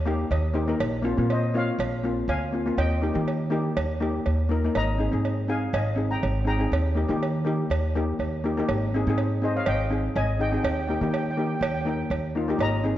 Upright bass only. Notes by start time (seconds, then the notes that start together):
Already playing: D#2
0.31 D#2
0.80 A#1
1.18 A#2
1.79 A#1
2.28 D2
2.78 D#2
3.15 D#3
3.77 D#2
4.26 D#2
4.75 G#1
5.13 G#2
5.73 G#1
6.23 G#1
6.72 D#2
7.09 D#3
7.70 D#2
8.19 D#2
8.69 G#1
9.07 G#2
9.67 G#1
10.16 G#1
10.64 D#2
11.01 D#3
11.61 D#2
12.10 D#2
12.59 G#1